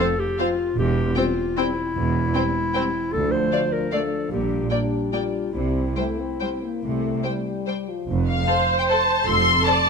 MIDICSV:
0, 0, Header, 1, 8, 480
1, 0, Start_track
1, 0, Key_signature, -1, "major"
1, 0, Tempo, 393701
1, 940, Time_signature, 3, 2, 24, 8
1, 5742, Tempo, 423430
1, 9102, Tempo, 400000
1, 11766, End_track
2, 0, Start_track
2, 0, Title_t, "Violin section"
2, 0, Program_c, 0, 48
2, 470, Note_on_c, 0, 77, 51
2, 567, Note_off_c, 0, 77, 0
2, 1413, Note_on_c, 0, 79, 47
2, 1510, Note_off_c, 0, 79, 0
2, 1920, Note_on_c, 0, 79, 46
2, 2017, Note_off_c, 0, 79, 0
2, 2855, Note_on_c, 0, 79, 44
2, 2953, Note_off_c, 0, 79, 0
2, 3342, Note_on_c, 0, 79, 42
2, 3440, Note_off_c, 0, 79, 0
2, 4290, Note_on_c, 0, 77, 40
2, 4387, Note_off_c, 0, 77, 0
2, 4775, Note_on_c, 0, 77, 39
2, 4872, Note_off_c, 0, 77, 0
2, 5734, Note_on_c, 0, 79, 36
2, 5825, Note_off_c, 0, 79, 0
2, 6217, Note_on_c, 0, 79, 33
2, 6307, Note_off_c, 0, 79, 0
2, 7167, Note_on_c, 0, 79, 35
2, 7258, Note_off_c, 0, 79, 0
2, 7663, Note_on_c, 0, 79, 34
2, 7754, Note_off_c, 0, 79, 0
2, 8616, Note_on_c, 0, 79, 33
2, 8707, Note_off_c, 0, 79, 0
2, 9111, Note_on_c, 0, 79, 33
2, 9207, Note_off_c, 0, 79, 0
2, 9825, Note_on_c, 0, 77, 66
2, 10394, Note_off_c, 0, 77, 0
2, 10438, Note_on_c, 0, 79, 64
2, 10486, Note_off_c, 0, 79, 0
2, 10563, Note_on_c, 0, 81, 70
2, 11014, Note_off_c, 0, 81, 0
2, 11020, Note_on_c, 0, 84, 86
2, 11489, Note_on_c, 0, 81, 73
2, 11492, Note_off_c, 0, 84, 0
2, 11766, Note_off_c, 0, 81, 0
2, 11766, End_track
3, 0, Start_track
3, 0, Title_t, "Violin section"
3, 0, Program_c, 1, 48
3, 480, Note_on_c, 1, 72, 52
3, 578, Note_off_c, 1, 72, 0
3, 1427, Note_on_c, 1, 72, 50
3, 1525, Note_off_c, 1, 72, 0
3, 1920, Note_on_c, 1, 72, 48
3, 2017, Note_off_c, 1, 72, 0
3, 2869, Note_on_c, 1, 72, 47
3, 2967, Note_off_c, 1, 72, 0
3, 3354, Note_on_c, 1, 72, 51
3, 3451, Note_off_c, 1, 72, 0
3, 4293, Note_on_c, 1, 74, 47
3, 4390, Note_off_c, 1, 74, 0
3, 4782, Note_on_c, 1, 74, 42
3, 4880, Note_off_c, 1, 74, 0
3, 5746, Note_on_c, 1, 74, 40
3, 5836, Note_off_c, 1, 74, 0
3, 6222, Note_on_c, 1, 74, 34
3, 6313, Note_off_c, 1, 74, 0
3, 7165, Note_on_c, 1, 72, 37
3, 7256, Note_off_c, 1, 72, 0
3, 7664, Note_on_c, 1, 72, 36
3, 7755, Note_off_c, 1, 72, 0
3, 8608, Note_on_c, 1, 72, 34
3, 8698, Note_off_c, 1, 72, 0
3, 9092, Note_on_c, 1, 72, 33
3, 9187, Note_off_c, 1, 72, 0
3, 10064, Note_on_c, 1, 72, 45
3, 10072, Note_on_c, 1, 69, 50
3, 10160, Note_off_c, 1, 72, 0
3, 10168, Note_off_c, 1, 69, 0
3, 10571, Note_on_c, 1, 72, 47
3, 10572, Note_on_c, 1, 69, 48
3, 10667, Note_off_c, 1, 72, 0
3, 10668, Note_off_c, 1, 69, 0
3, 11492, Note_on_c, 1, 72, 49
3, 11493, Note_on_c, 1, 69, 45
3, 11588, Note_off_c, 1, 72, 0
3, 11589, Note_off_c, 1, 69, 0
3, 11766, End_track
4, 0, Start_track
4, 0, Title_t, "Clarinet"
4, 0, Program_c, 2, 71
4, 0, Note_on_c, 2, 69, 92
4, 237, Note_on_c, 2, 67, 78
4, 255, Note_off_c, 2, 69, 0
4, 490, Note_on_c, 2, 65, 79
4, 509, Note_off_c, 2, 67, 0
4, 948, Note_off_c, 2, 65, 0
4, 961, Note_on_c, 2, 67, 75
4, 1424, Note_on_c, 2, 65, 74
4, 1442, Note_off_c, 2, 67, 0
4, 1917, Note_on_c, 2, 64, 80
4, 1935, Note_off_c, 2, 65, 0
4, 3810, Note_on_c, 2, 69, 73
4, 3829, Note_off_c, 2, 64, 0
4, 4038, Note_on_c, 2, 72, 74
4, 4056, Note_off_c, 2, 69, 0
4, 4540, Note_on_c, 2, 70, 61
4, 4558, Note_off_c, 2, 72, 0
4, 4787, Note_on_c, 2, 69, 62
4, 4806, Note_off_c, 2, 70, 0
4, 5248, Note_off_c, 2, 69, 0
4, 5255, Note_on_c, 2, 67, 56
4, 5730, Note_off_c, 2, 67, 0
4, 5737, Note_on_c, 2, 62, 47
4, 6206, Note_on_c, 2, 65, 54
4, 6223, Note_off_c, 2, 62, 0
4, 6664, Note_on_c, 2, 64, 49
4, 6681, Note_off_c, 2, 65, 0
4, 9094, Note_off_c, 2, 64, 0
4, 11766, End_track
5, 0, Start_track
5, 0, Title_t, "Viola section"
5, 0, Program_c, 3, 48
5, 484, Note_on_c, 3, 60, 49
5, 581, Note_off_c, 3, 60, 0
5, 1422, Note_on_c, 3, 60, 49
5, 1520, Note_off_c, 3, 60, 0
5, 1913, Note_on_c, 3, 60, 49
5, 2011, Note_off_c, 3, 60, 0
5, 2852, Note_on_c, 3, 60, 50
5, 2950, Note_off_c, 3, 60, 0
5, 3347, Note_on_c, 3, 60, 50
5, 3445, Note_off_c, 3, 60, 0
5, 4289, Note_on_c, 3, 57, 45
5, 4387, Note_off_c, 3, 57, 0
5, 4786, Note_on_c, 3, 57, 46
5, 4884, Note_off_c, 3, 57, 0
5, 5739, Note_on_c, 3, 58, 38
5, 5830, Note_off_c, 3, 58, 0
5, 6214, Note_on_c, 3, 58, 36
5, 6305, Note_off_c, 3, 58, 0
5, 7163, Note_on_c, 3, 55, 37
5, 7254, Note_off_c, 3, 55, 0
5, 7670, Note_on_c, 3, 55, 36
5, 7761, Note_off_c, 3, 55, 0
5, 8618, Note_on_c, 3, 55, 34
5, 8709, Note_off_c, 3, 55, 0
5, 9102, Note_on_c, 3, 55, 34
5, 9198, Note_off_c, 3, 55, 0
5, 10070, Note_on_c, 3, 72, 67
5, 10974, Note_off_c, 3, 72, 0
5, 11025, Note_on_c, 3, 69, 59
5, 11494, Note_off_c, 3, 69, 0
5, 11501, Note_on_c, 3, 74, 75
5, 11766, Note_off_c, 3, 74, 0
5, 11766, End_track
6, 0, Start_track
6, 0, Title_t, "French horn section"
6, 0, Program_c, 4, 60
6, 0, Note_on_c, 4, 53, 53
6, 0, Note_on_c, 4, 60, 54
6, 159, Note_off_c, 4, 60, 0
6, 160, Note_off_c, 4, 53, 0
6, 475, Note_on_c, 4, 53, 48
6, 478, Note_on_c, 4, 60, 50
6, 644, Note_off_c, 4, 53, 0
6, 646, Note_off_c, 4, 60, 0
6, 1412, Note_on_c, 4, 55, 45
6, 1413, Note_on_c, 4, 60, 49
6, 1590, Note_off_c, 4, 55, 0
6, 1591, Note_off_c, 4, 60, 0
6, 1907, Note_on_c, 4, 55, 52
6, 1911, Note_on_c, 4, 60, 48
6, 2079, Note_off_c, 4, 55, 0
6, 2082, Note_off_c, 4, 60, 0
6, 2860, Note_on_c, 4, 55, 48
6, 2861, Note_on_c, 4, 60, 43
6, 3038, Note_off_c, 4, 55, 0
6, 3039, Note_off_c, 4, 60, 0
6, 3353, Note_on_c, 4, 55, 46
6, 3353, Note_on_c, 4, 60, 44
6, 3522, Note_off_c, 4, 55, 0
6, 3522, Note_off_c, 4, 60, 0
6, 3817, Note_on_c, 4, 53, 59
6, 3820, Note_on_c, 4, 62, 55
6, 4737, Note_off_c, 4, 53, 0
6, 4739, Note_off_c, 4, 62, 0
6, 4772, Note_on_c, 4, 62, 48
6, 4776, Note_on_c, 4, 53, 47
6, 5234, Note_off_c, 4, 62, 0
6, 5244, Note_off_c, 4, 53, 0
6, 5248, Note_on_c, 4, 62, 45
6, 5251, Note_on_c, 4, 55, 45
6, 5711, Note_off_c, 4, 55, 0
6, 5714, Note_off_c, 4, 62, 0
6, 5726, Note_on_c, 4, 55, 46
6, 5729, Note_on_c, 4, 62, 45
6, 6656, Note_off_c, 4, 55, 0
6, 6657, Note_off_c, 4, 62, 0
6, 6678, Note_on_c, 4, 55, 43
6, 6678, Note_on_c, 4, 60, 40
6, 7101, Note_off_c, 4, 55, 0
6, 7110, Note_off_c, 4, 60, 0
6, 7165, Note_on_c, 4, 57, 50
6, 7400, Note_off_c, 4, 57, 0
6, 7421, Note_on_c, 4, 60, 47
6, 7911, Note_on_c, 4, 58, 41
6, 7912, Note_off_c, 4, 60, 0
6, 8138, Note_off_c, 4, 58, 0
6, 8143, Note_on_c, 4, 57, 49
6, 8615, Note_off_c, 4, 57, 0
6, 8626, Note_on_c, 4, 55, 47
6, 9354, Note_on_c, 4, 53, 39
6, 9359, Note_off_c, 4, 55, 0
6, 9589, Note_off_c, 4, 53, 0
6, 11766, End_track
7, 0, Start_track
7, 0, Title_t, "Cello section"
7, 0, Program_c, 5, 48
7, 942, Note_on_c, 5, 40, 71
7, 1332, Note_off_c, 5, 40, 0
7, 2385, Note_on_c, 5, 40, 62
7, 2773, Note_off_c, 5, 40, 0
7, 3813, Note_on_c, 5, 38, 58
7, 4204, Note_off_c, 5, 38, 0
7, 5253, Note_on_c, 5, 46, 55
7, 5654, Note_off_c, 5, 46, 0
7, 6684, Note_on_c, 5, 48, 49
7, 7079, Note_off_c, 5, 48, 0
7, 8139, Note_on_c, 5, 48, 45
7, 8531, Note_off_c, 5, 48, 0
7, 9593, Note_on_c, 5, 41, 59
7, 9984, Note_off_c, 5, 41, 0
7, 11016, Note_on_c, 5, 41, 60
7, 11407, Note_off_c, 5, 41, 0
7, 11766, End_track
8, 0, Start_track
8, 0, Title_t, "Double bass section"
8, 0, Program_c, 6, 48
8, 941, Note_on_c, 6, 28, 69
8, 1332, Note_off_c, 6, 28, 0
8, 2389, Note_on_c, 6, 28, 62
8, 2775, Note_off_c, 6, 28, 0
8, 3821, Note_on_c, 6, 38, 60
8, 4208, Note_off_c, 6, 38, 0
8, 5261, Note_on_c, 6, 34, 57
8, 5658, Note_off_c, 6, 34, 0
8, 6678, Note_on_c, 6, 36, 47
8, 7076, Note_off_c, 6, 36, 0
8, 8143, Note_on_c, 6, 36, 45
8, 8533, Note_off_c, 6, 36, 0
8, 9591, Note_on_c, 6, 29, 63
8, 9983, Note_off_c, 6, 29, 0
8, 11019, Note_on_c, 6, 29, 64
8, 11408, Note_off_c, 6, 29, 0
8, 11766, End_track
0, 0, End_of_file